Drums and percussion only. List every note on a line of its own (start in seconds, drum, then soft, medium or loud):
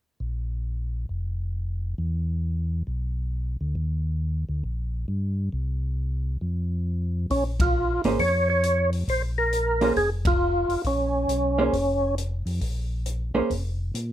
7.30 kick soft
7.30 open hi-hat soft
7.60 kick medium
7.60 ride medium
8.04 open hi-hat soft
8.19 kick soft
8.19 open hi-hat soft
8.63 closed hi-hat soft
8.93 open hi-hat soft
9.08 kick soft
9.08 open hi-hat soft
9.52 closed hi-hat soft
9.81 open hi-hat soft
9.96 kick soft
9.96 open hi-hat soft
10.25 kick medium
10.25 ride medium
10.69 open hi-hat soft
10.84 kick soft
10.84 open hi-hat soft
11.29 closed hi-hat soft
11.73 kick soft
11.73 open hi-hat soft
12.18 closed hi-hat soft
12.46 open hi-hat soft
12.61 kick soft
12.61 open hi-hat soft
13.06 closed hi-hat soft
13.50 kick soft
13.50 open hi-hat soft
13.95 closed hi-hat soft